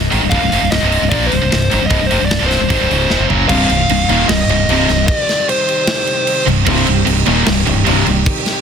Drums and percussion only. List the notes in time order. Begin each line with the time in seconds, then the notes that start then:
0.12 open hi-hat
0.31 kick, open hi-hat
0.52 open hi-hat
0.72 snare, open hi-hat
0.92 open hi-hat
1.12 kick, open hi-hat
1.32 open hi-hat
1.52 snare, open hi-hat
1.71 open hi-hat
1.90 kick, open hi-hat
2.11 open hi-hat
2.31 snare, open hi-hat
2.51 snare, open hi-hat
2.70 kick, open hi-hat
2.91 open hi-hat
3.10 snare
3.30 floor tom
3.49 kick, crash
3.69 crash
3.89 crash
4.09 crash
4.29 snare, crash
4.49 crash
4.69 crash
4.89 snare, crash
5.08 kick, crash
5.29 snare, crash
5.49 crash
5.69 crash
5.87 snare, crash
6.07 crash
6.27 crash
6.48 crash
6.67 kick, crash
6.87 crash
7.07 crash
7.26 crash
7.46 snare, crash
7.67 crash
7.87 crash
8.07 crash
8.26 kick, crash
8.46 snare, crash